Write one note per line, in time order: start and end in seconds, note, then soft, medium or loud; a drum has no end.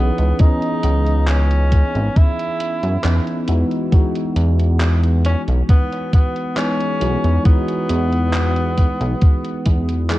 0.00 0.11 B1 medium
0.00 0.38 E3 medium
0.00 0.39 B3 medium
0.00 0.42 B3 medium
0.00 0.40 C#4 medium
0.00 3.05 D#4 medium
0.00 0.35 G#4 medium
0.00 3.05 B4 medium
0.18 0.33 C#2 medium
0.18 closed hi-hat soft
0.38 2.99 E3 medium
0.38 2.99 B3 medium
0.38 2.99 C#4 medium
0.38 1.29 D#4 loud
0.38 3.00 G#4 medium
0.38 3.00 D#5 medium
0.38 kick loud
0.38 closed hi-hat medium
0.62 closed hi-hat soft
0.83 1.83 C#2 medium
0.83 closed hi-hat medium
1.07 closed hi-hat soft
1.28 2.18 C#4 loud
1.28 clap loud
1.28 closed hi-hat medium
1.51 closed hi-hat soft
1.72 kick medium
1.72 closed hi-hat medium
1.95 2.09 G#1 loud
1.95 closed hi-hat soft
2.16 3.49 E4 loud
2.16 kick loud
2.16 closed hi-hat medium
2.39 closed hi-hat soft
2.60 closed hi-hat medium
2.83 2.97 F#2 medium
2.83 closed hi-hat soft
3.04 3.20 E2 medium
3.04 3.18 E3 medium
3.04 3.18 B3 medium
3.04 3.19 C#4 medium
3.04 3.19 D#4 medium
3.04 3.19 B4 medium
3.04 clap loud
3.04 closed hi-hat medium
3.27 closed hi-hat soft
3.48 3.64 E2 medium
3.48 3.87 E3 medium
3.48 3.87 G#3 medium
3.48 3.88 B3 medium
3.48 3.88 D#4 medium
3.48 3.88 F#4 medium
3.48 closed hi-hat medium
3.71 closed hi-hat soft
3.91 6.52 E3 medium
3.91 6.52 G#3 medium
3.91 6.52 B3 medium
3.91 6.53 D#4 medium
3.91 6.53 F#4 medium
3.91 kick loud
3.91 closed hi-hat medium
4.15 closed hi-hat soft
4.36 5.36 E2 loud
4.36 closed hi-hat medium
4.60 closed hi-hat soft
4.80 clap loud
4.80 closed hi-hat medium
5.04 closed hi-hat soft
5.25 5.42 C#4 loud
5.25 closed hi-hat medium
5.48 5.62 B1 loud
5.48 closed hi-hat soft
5.69 6.10 B3 loud
5.69 kick loud
5.69 closed hi-hat medium
5.92 closed hi-hat soft
6.13 6.55 B3 loud
6.13 kick loud
6.13 closed hi-hat medium
6.36 closed hi-hat soft
6.56 6.71 E3 medium
6.56 6.71 G#3 medium
6.56 6.71 B3 medium
6.56 7.42 C#4 loud
6.56 6.72 D#4 medium
6.56 6.72 G#4 medium
6.56 clap loud
6.56 closed hi-hat medium
6.80 closed hi-hat soft
7.00 7.17 B1 medium
7.00 7.40 E3 medium
7.00 7.40 G#3 medium
7.00 7.40 B3 medium
7.00 7.40 D#4 medium
7.00 7.41 F#4 medium
7.00 closed hi-hat medium
7.24 7.39 E2 medium
7.24 closed hi-hat soft
7.44 10.04 E3 medium
7.44 10.05 G#3 medium
7.44 10.05 B3 medium
7.44 10.06 B3 loud
7.44 10.05 D#4 medium
7.44 10.06 F#4 medium
7.44 kick loud
7.44 closed hi-hat medium
7.68 closed hi-hat soft
7.89 8.89 E2 medium
7.89 closed hi-hat medium
8.12 closed hi-hat soft
8.33 clap loud
8.33 closed hi-hat medium
8.56 closed hi-hat soft
8.77 kick medium
8.77 closed hi-hat medium
9.01 9.15 B1 loud
9.01 closed hi-hat soft
9.21 kick loud
9.21 closed hi-hat medium
9.44 closed hi-hat soft
9.65 10.19 E2 medium
9.65 kick medium
9.65 closed hi-hat medium
9.89 closed hi-hat soft
10.09 10.19 E3 medium
10.09 10.19 G#3 medium
10.09 10.19 B3 medium
10.09 10.19 D#4 medium
10.09 10.19 G#4 medium
10.09 clap loud
10.09 closed hi-hat medium